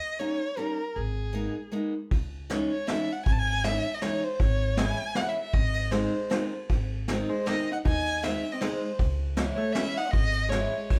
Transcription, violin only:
Already playing: D#5
0.19 C#5
0.58 A#4
0.96 G#4
2.70 C#5
2.87 E5
3.12 F#5
3.25 G#5
3.32 A5
3.39 G#5
3.64 E5
3.94 D#5
4.02 C#5
4.24 C5
4.40 C#5
4.77 G#5
5.16 F#5
5.29 E5
5.40 E5
5.53 D#5
5.92 C5
7.29 C5
7.47 D#5
7.73 F#5
7.86 G#5
8.23 E5
8.52 D#5
8.61 C5
9.55 C#5
9.73 E5
9.97 F#5
10.11 D#5
10.49 C#5

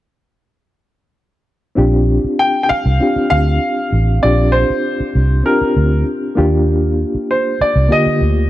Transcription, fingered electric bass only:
1.78 A#1
2.24 muted fingered electric bass stroke
2.70 muted fingered electric bass stroke
2.86 C2
3.16 muted fingered electric bass stroke
3.31 D2
3.92 A1
4.24 A#1
4.70 muted fingered electric bass stroke
5.00 muted fingered electric bass stroke
5.15 C2
5.61 muted fingered electric bass stroke
5.76 D2
6.38 D#2
7.15 muted fingered electric bass stroke
7.61 muted fingered electric bass stroke
7.76 C2
8.06 muted fingered electric bass stroke
8.21 D2

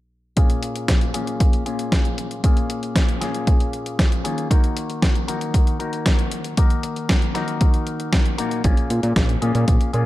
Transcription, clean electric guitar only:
0.36 A#2 A#3 C#4 F4 G#4
1.14 A#2 A#3 C#4 F4 G#4
1.66 A#2 A#3 C#4 F4 G#4
2.43 A#2 A#3 C#4 F4 G#4
3.21 A#2 A#3 C#4 F4 G#4
4.24 D#3 A#3 C#4 F4 G#4
4.50 D#3 A#3 D#4 F#4 A#4
5.28 D#3 A#3 D#4 F#4 A#4
5.79 D#3 A#3 D#4 F#4 A#4
6.57 D#3 A#3 D#4 F#4 A#4
7.35 D#3 A#3 D#4 F#4 A#4
8.38 A#2 A#3 D#4 F#4 A#4
8.64 A#2 A#3 C#4 F4 G#4
9.42 A#2 A#3 C#4 F4 G#4
9.93 A#2 A#3 C#4 F4 G#4

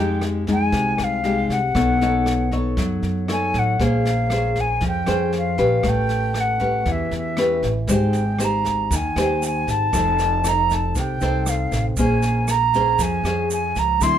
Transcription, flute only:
Already playing: G5
0.52 G#5
1.03 F5
1.52 F#5
3.32 G#5
3.58 F#5
3.83 F5
4.60 G#5
4.87 G5
5.38 F5
5.88 G5
6.40 F#5
6.91 E5
7.17 E5
7.93 G5
8.44 A#5
8.95 G#5
9.46 G#5
9.70 A5
10.48 A#5
10.73 A5
10.99 G5
11.49 F5
11.99 G#5
12.50 A#5
13.02 G#5
13.52 G#5
13.79 A#5
14.02 C6

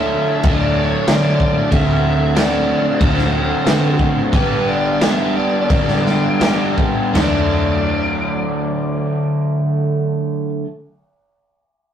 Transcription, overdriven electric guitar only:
Already playing: D3 F#3 A3 D4
0.43 D3 F#3 A3 D4
1.07 D3 F#3 A3 D4
1.71 D3 A3 C4 F#4
2.35 D3 A3 C4 F#4
2.99 D3 A3 C4 F#4
3.65 D3 A3 C4 F#4
4.32 G2 D3 G3 B3 D4 G4
5.00 G3 B3 D4 G4
5.69 G2 D3 G3 B3 D4 G4
6.40 G3 B3 D4 G4
7.13 D3 F#3 A3
7.17 D4

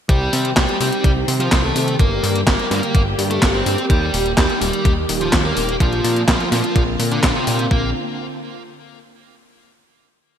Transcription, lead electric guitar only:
0.09 G3 G4
0.56 G3 G4
0.80 G3 G4
1.40 F3 F4
1.64 A3 A4
2.00 A#3 A#4
2.47 A#3 A#4
2.71 A#3 A#4
3.31 A3 A4
3.54 C4 C5
3.90 G3 G4
4.37 G3 G4
4.61 G3 G4
5.21 F3 F4
5.45 A#3 A#4
5.80 F3 F4
6.28 F3 F4
6.52 F3 F4
7.12 D3 D4
7.35 C3 C4
7.71 A#3

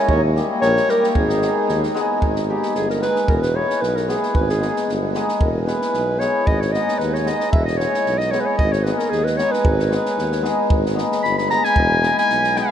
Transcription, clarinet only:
0.10 C#5
0.62 C#5
0.90 A#4
1.09 A#4
1.16 G#4
2.49 G4
2.76 G#4
2.90 A#4
3.03 B4
3.29 A#4
3.42 B4
3.56 C#5
3.82 B4
3.96 A#4
4.09 G#4
4.36 B4
4.50 G#4
5.40 A#4
5.66 B4
6.20 C#5
6.47 D#5
6.61 C#5
6.73 D#5
6.99 B4
7.13 C#5 D#5
7.27 D#5
7.52 E5
7.66 D#5
7.77 C#5
8.18 D#5
8.31 C#5
8.40 B4
8.46 C#5
8.58 D#5
8.72 C#5
8.84 B4
8.98 A#4
9.10 G#4
9.24 B4
9.37 C#5
9.52 B4
11.23 B5
11.38 B5
11.50 A#5
11.64 G#5
12.19 G#5
12.58 D#5

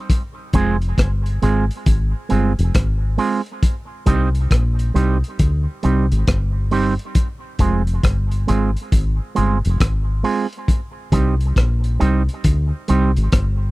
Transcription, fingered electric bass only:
0.54 F1
0.98 G1
1.43 G#1
1.87 G#1
2.31 G1
2.59 F1
2.75 G#1
4.07 C2
4.51 A#1
4.95 C2
5.40 D2
5.85 C2
6.12 G#1
6.28 G1
7.60 F1
8.04 G1
8.49 G#1
8.93 G#1
9.38 G1
9.65 F1
9.81 G#1
11.12 C2
11.57 A#1
12.02 C2
12.45 D2
12.90 C2
13.17 G#1
13.33 G1

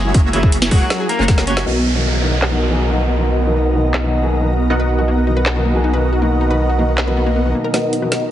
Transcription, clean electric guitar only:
Already playing: G#3 G#4
0.33 E3 E4
0.71 F#3 F#4
1.09 A#3 A#4
1.47 C#4 C#5

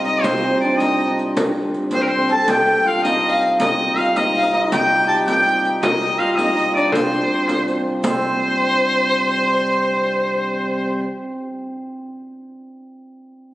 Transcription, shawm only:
0.04 D#5
0.22 C5
0.61 D5
0.79 D#5
1.94 C5
2.02 A#4
2.08 C5
2.32 A5
2.50 G5
2.87 F5
3.03 D#5
3.60 D#5
3.97 F5
4.17 D#5
4.54 D#5
4.73 G5
5.08 A5
5.27 G5
5.83 D#5
6.19 F5
6.33 D#5 F5
6.75 D5
6.92 C5
8.06 C5

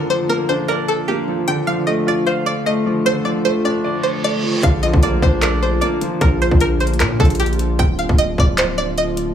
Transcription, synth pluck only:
0.10 C5
0.29 A#4
0.49 C5
0.68 A#4
0.88 A4
1.08 G4
1.48 G5
1.67 F5
1.87 D#5
2.08 D5
2.26 C5
2.46 D5
2.66 D#5
3.06 C5
3.25 D5
3.45 C5
3.65 D5
4.03 C5
4.24 D5
4.63 F5
4.83 D#5
5.03 D5
5.23 C5
5.42 A#4
5.62 C5
5.81 D5
6.21 A#4
6.42 C5
6.61 A#4
6.80 C5
7.00 A#4
7.20 A4
7.40 G4
7.79 G5
7.99 F5
8.18 D#5
8.40 D5
8.58 C5
8.78 D5
8.98 D#5

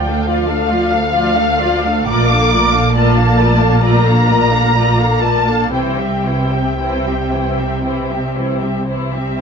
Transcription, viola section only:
0.09 A3 D4
0.29 F3 F4
0.49 A3 D4
0.72 F3 F4
0.92 A3 D4
1.14 F3 F4
1.37 A3 D4
1.61 F3 F4
1.84 A3 D4
2.08 A3 F4
2.31 A#3 D4
2.52 A3 F4
2.73 A#3 D4
2.96 A3 F4
3.17 A#3 D4
3.39 A3 F4
3.60 A#3 D4
3.83 A3 F4
4.06 A#3 D4
4.29 A3 F4
4.51 A#3 D4
4.75 A3 F4
4.99 A#3 D4
5.22 A3 F4
5.47 A#3 D4
5.73 E3 E4
5.99 G3 C4
6.26 E3 E4
6.53 G3 C4
6.80 E3 E4
7.07 G3 C4
7.33 E3 E4
7.59 G3 C4
7.85 E3 E4
8.10 G3 C4
8.36 E3 E4
8.62 G3 C4
8.88 E3 E4
9.14 G3 C4

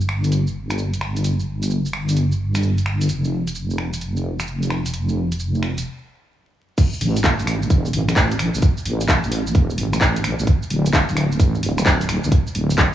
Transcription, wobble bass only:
Already playing: G1
3.09 F1
7.01 A1
7.40 A1
7.70 E1
7.93 A1
8.16 A1
8.55 A1
8.85 A1
9.24 A1
9.55 E1
9.78 A1
10.01 A1
10.40 A1
10.70 D1
11.09 D1
11.40 A1
11.63 D1
11.86 D1
12.24 D1
12.55 D1

